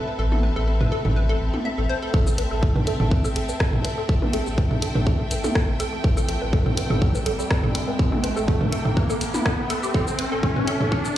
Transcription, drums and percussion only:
0.32 high tom soft
0.81 mid tom medium
1.05 mid tom medium
1.54 high tom soft
2.14 kick loud
2.27 shaker soft
2.38 closed hi-hat medium
2.63 kick loud
2.76 mid tom medium
2.87 closed hi-hat medium
3.00 mid tom medium
3.11 kick loud
3.24 shaker soft
3.36 closed hi-hat medium
3.49 shaker soft
3.60 kick loud
3.60 cross-stick loud
3.73 mid tom medium
3.85 closed hi-hat medium
4.09 kick loud
4.22 high tom medium
4.33 closed hi-hat medium
4.46 shaker soft
4.58 kick loud
4.71 mid tom medium
4.82 closed hi-hat medium
4.95 mid tom medium
5.07 kick loud
5.31 closed hi-hat medium
5.31 shaker soft
5.44 high tom medium
5.44 shaker soft
5.55 kick loud
5.55 cross-stick loud
5.80 closed hi-hat medium
5.80 shaker soft
6.04 kick loud
6.17 shaker soft
6.29 closed hi-hat medium
6.53 kick loud
6.66 mid tom medium
6.77 closed hi-hat medium
6.90 mid tom medium
7.02 kick loud
7.15 shaker soft
7.26 closed hi-hat loud
7.39 shaker soft
7.51 kick loud
7.51 cross-stick loud
7.64 mid tom medium
7.75 closed hi-hat medium
7.99 kick loud
8.12 high tom medium
8.24 closed hi-hat medium
8.37 shaker soft
8.48 kick loud
8.61 mid tom medium
8.72 closed hi-hat medium
8.85 mid tom medium
8.97 kick loud
9.10 shaker soft
9.21 closed hi-hat medium
9.21 shaker soft
9.34 high tom medium
9.34 shaker soft
9.46 kick loud
9.46 cross-stick loud
9.70 closed hi-hat medium
9.70 shaker soft
9.83 shaker soft
9.94 kick loud
10.07 shaker soft
10.19 closed hi-hat medium
10.43 kick loud
10.56 mid tom medium
10.67 closed hi-hat medium
10.81 mid tom medium
10.92 kick loud
11.05 shaker soft

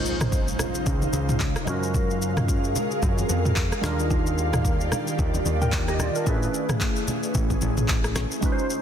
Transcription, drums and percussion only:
0.06 shaker medium
0.21 cross-stick loud
0.21 mid tom medium
0.21 high conga medium
0.21 shaker medium
0.32 kick medium
0.32 shaker medium
0.48 shaker medium
0.59 cross-stick loud
0.59 low conga medium
0.59 shaker medium
0.75 shaker medium
0.86 kick loud
0.86 low conga medium
0.86 shaker medium
1.02 high conga medium
1.02 shaker medium
1.13 high conga medium
1.13 shaker loud
1.29 mid tom medium
1.29 shaker medium
1.40 kick medium
1.40 clap medium
1.40 high conga soft
1.40 shaker medium
1.56 cross-stick medium
1.56 shaker soft
1.67 cross-stick medium
1.67 high conga medium
1.67 low conga medium
1.67 shaker medium
1.83 shaker medium
1.94 kick loud
1.94 low conga medium
1.94 shaker medium
2.10 shaker medium
2.22 shaker medium
2.37 cross-stick medium
2.37 mid tom medium
2.37 high conga medium
2.37 shaker medium
2.48 kick loud
2.48 shaker medium
2.64 shaker medium
2.76 low conga medium
2.76 shaker medium
2.91 shaker medium
3.02 kick loud
3.02 low conga medium
3.02 shaker medium
3.18 high conga medium
3.18 shaker medium
3.29 high conga medium
3.29 shaker loud
3.45 mid tom medium
3.45 shaker medium
3.56 kick medium
3.56 clap loud
3.56 high conga soft
3.56 shaker medium
3.72 cross-stick medium
3.72 shaker soft
3.83 cross-stick medium
3.83 snare medium
3.83 high conga medium
3.83 low conga medium
3.83 shaker medium
3.99 shaker medium
4.10 kick loud
4.10 low conga medium
4.10 shaker medium
4.27 shaker medium
4.38 shaker medium
4.53 cross-stick medium
4.53 mid tom medium
4.53 high conga medium
4.53 shaker medium
4.65 kick loud
4.65 shaker medium
4.80 shaker medium
4.92 cross-stick medium
4.92 low conga medium
4.92 shaker medium
5.07 shaker medium
5.19 kick loud
5.19 low conga medium
5.19 shaker medium
5.34 high conga medium
5.34 shaker medium
5.45 high conga medium
5.45 shaker loud
5.62 mid tom medium
5.62 shaker medium
5.72 kick medium
5.72 clap loud
5.72 high conga soft
5.72 shaker medium
5.88 cross-stick medium
5.88 shaker soft
5.99 cross-stick medium
5.99 high conga medium
5.99 low conga medium
5.99 shaker medium
6.15 shaker medium
6.27 kick loud
6.27 shaker medium
6.43 shaker medium
6.54 shaker medium
6.69 cross-stick medium
6.69 mid tom medium
6.69 high conga medium
6.69 shaker medium
6.81 kick medium
6.81 clap loud
6.81 shaker medium
6.96 shaker medium
7.08 low conga medium
7.08 shaker medium
7.23 shaker medium
7.35 kick loud
7.35 low conga medium
7.35 shaker medium
7.50 kick medium
7.50 high conga medium
7.50 shaker medium
7.61 high conga medium
7.61 shaker loud
7.77 mid tom medium
7.77 shaker medium
7.88 kick medium
7.88 clap medium
7.88 high conga soft
7.88 shaker medium
8.04 cross-stick medium
8.04 shaker soft
8.16 cross-stick medium
8.16 snare medium
8.16 high conga medium
8.16 low conga medium
8.16 shaker medium
8.31 shaker medium
8.42 kick loud
8.42 low conga medium
8.42 shaker medium
8.59 shaker medium
8.70 shaker medium

